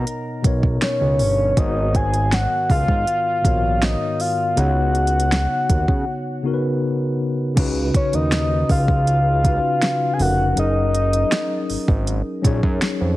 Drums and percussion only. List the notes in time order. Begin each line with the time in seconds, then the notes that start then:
0.07 closed hi-hat
0.44 kick, closed hi-hat
0.63 kick
0.82 snare, closed hi-hat
1.19 open hi-hat
1.57 kick, closed hi-hat
1.95 kick, closed hi-hat
2.14 closed hi-hat
2.32 snare, closed hi-hat
2.70 kick, open hi-hat
2.88 kick
3.07 closed hi-hat
3.45 kick, closed hi-hat
3.82 snare, closed hi-hat
4.20 open hi-hat
4.57 closed hi-hat
4.95 closed hi-hat
5.07 closed hi-hat
5.20 closed hi-hat
5.32 snare, closed hi-hat
5.69 kick, closed hi-hat
5.88 kick
7.57 kick, closed hi-hat, crash
7.94 kick, closed hi-hat
8.13 closed hi-hat
8.32 snare, closed hi-hat
8.69 kick, open hi-hat
8.88 kick
9.07 closed hi-hat
9.44 kick, closed hi-hat
9.82 snare, closed hi-hat
10.19 open hi-hat
10.57 closed hi-hat
10.95 closed hi-hat
11.13 closed hi-hat
11.32 snare, closed hi-hat
11.70 open hi-hat
11.88 kick
12.07 closed hi-hat
12.44 kick, closed hi-hat
12.63 kick
12.82 snare, closed hi-hat